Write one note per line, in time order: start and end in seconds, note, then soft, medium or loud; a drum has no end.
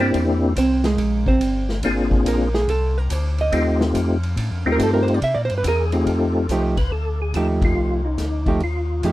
0.00 0.12 G2 medium
0.00 0.53 A#3 medium
0.00 0.53 C4 medium
0.00 0.39 C4 medium
0.00 0.54 D4 medium
0.00 0.54 E4 medium
0.00 0.54 G4 medium
0.00 0.39 C5 medium
0.13 0.55 E2 medium
0.13 kick soft
0.13 ride medium
0.56 0.97 C2 medium
0.56 0.85 C4 medium
0.56 0.84 C5 loud
0.56 kick soft
0.56 hi-hat pedal medium
0.56 ride medium
0.84 1.24 G#3 medium
0.84 1.24 G#4 medium
0.84 snare medium
0.84 ride soft
0.98 1.39 A#1 medium
0.98 kick soft
0.98 ride medium
1.26 1.67 C4 medium
1.26 1.67 C5 medium
1.26 kick medium
1.40 1.82 G1 medium
1.40 kick soft
1.40 hi-hat pedal medium
1.40 ride medium
1.69 snare soft
1.83 2.24 G#1 medium
1.83 2.49 A#3 medium
1.83 2.49 C4 medium
1.83 2.49 D4 medium
1.83 2.49 F4 medium
1.83 2.49 G#4 medium
1.83 kick soft
1.83 ride medium
2.11 kick soft
2.25 2.66 A#1 medium
2.25 2.54 A#4 medium
2.25 kick soft
2.25 hi-hat pedal medium
2.25 ride medium
2.54 2.68 G#4 loud
2.54 snare soft
2.68 3.09 C2 loud
2.68 2.98 A4 medium
2.68 kick soft
2.68 ride medium
2.98 3.13 A#4 medium
3.10 3.51 D2 loud
3.10 3.39 C5 medium
3.10 kick soft
3.10 hi-hat pedal medium
3.10 ride medium
3.38 3.79 D#5 loud
3.38 ride soft
3.52 3.93 D#2 medium
3.52 4.17 A3 medium
3.52 4.17 C4 medium
3.52 4.18 D#4 medium
3.52 4.18 F4 medium
3.52 4.18 G4 medium
3.52 kick soft
3.52 ride medium
3.81 snare medium
3.94 4.36 F2 loud
3.94 kick soft
3.94 hi-hat pedal medium
3.94 ride medium
4.23 ride medium
4.36 4.51 A2 medium
4.36 kick soft
4.36 ride medium
4.51 4.65 F2 medium
4.65 4.79 D#2 medium
4.65 5.20 A3 medium
4.65 5.19 C4 medium
4.65 5.20 D#4 medium
4.65 5.20 F4 medium
4.65 5.20 G4 medium
4.72 4.79 A#4 medium
4.79 5.20 G2 loud
4.79 kick soft
4.79 hi-hat pedal medium
4.79 ride medium
4.83 4.93 A4 loud
4.94 5.07 A#4 medium
5.03 5.14 C5 loud
5.08 ride soft
5.14 5.21 D5 loud
5.21 5.35 C3 medium
5.21 5.37 E5 loud
5.21 kick soft
5.21 ride medium
5.34 5.50 A#2 medium
5.34 5.45 D5 medium
5.45 5.54 C5 loud
5.50 5.63 G2 medium
5.50 ride medium
5.58 5.64 B4 medium
5.63 6.05 E2 medium
5.63 kick soft
5.63 hi-hat pedal medium
5.63 ride medium
5.68 6.10 G#4 medium
5.68 5.84 A#4 medium
5.92 6.46 A3 medium
5.92 6.47 C4 medium
5.92 6.47 D#4 medium
5.92 6.47 F4 medium
5.92 6.47 G4 medium
5.92 ride medium
6.06 6.48 F2 medium
6.06 6.52 A4 medium
6.06 kick soft
6.06 ride medium
6.48 6.90 C2 medium
6.48 6.76 F3 medium
6.48 6.76 A3 medium
6.48 6.76 D#4 medium
6.48 6.76 G4 medium
6.48 6.63 C5 medium
6.48 kick soft
6.48 hi-hat pedal medium
6.48 ride medium
6.77 6.92 B4 medium
6.77 kick soft
6.77 ride medium
6.91 7.33 D2 medium
6.91 7.21 A4 medium
6.91 kick soft
7.22 7.34 G#4 medium
7.33 7.75 D#2 medium
7.33 8.00 F3 medium
7.33 8.00 A3 medium
7.33 8.01 D#4 medium
7.33 8.00 G4 medium
7.33 7.48 A4 medium
7.33 kick soft
7.33 hi-hat pedal soft
7.33 ride medium
7.62 8.07 F4 loud
7.62 kick medium
7.62 ride medium
7.75 8.17 C2 medium
8.05 8.48 D#4 medium
8.18 8.60 D2 medium
8.18 kick soft
8.18 snare soft
8.18 hi-hat pedal soft
8.18 ride medium
8.46 8.60 F3 medium
8.46 8.60 A3 medium
8.46 8.61 D#4 medium
8.46 8.61 F4 medium
8.46 8.61 G4 medium
8.46 kick soft
8.46 ride soft
8.60 9.02 D#2 medium
8.60 9.06 F4 medium
8.60 kick soft
8.60 ride soft
9.03 9.12 F2 medium
9.03 9.12 F3 medium
9.03 9.12 A3 medium
9.03 9.12 D#4 medium
9.03 9.12 G4 medium
9.03 9.12 G#4 medium
9.03 kick soft
9.03 hi-hat pedal soft
9.03 ride medium